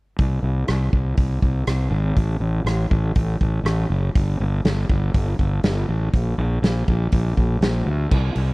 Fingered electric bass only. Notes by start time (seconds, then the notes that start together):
0.19 C2
0.43 C2
0.69 C2
0.93 C2
1.17 C2
1.42 C2
1.67 C2
1.91 G#1
2.17 A1
2.40 A1
2.64 A1
2.91 A1
3.16 A1
3.41 A1
3.64 A1
3.90 F#1
4.15 G1
4.40 G1
4.65 G1
4.90 G1
5.14 G1
5.39 G1
5.63 G1
5.89 A1
6.13 A#1
6.38 A#1
6.62 A#1
6.88 A#1
7.13 A#1
7.37 A#1
7.61 A#1
7.86 D2
8.12 C2
8.36 C2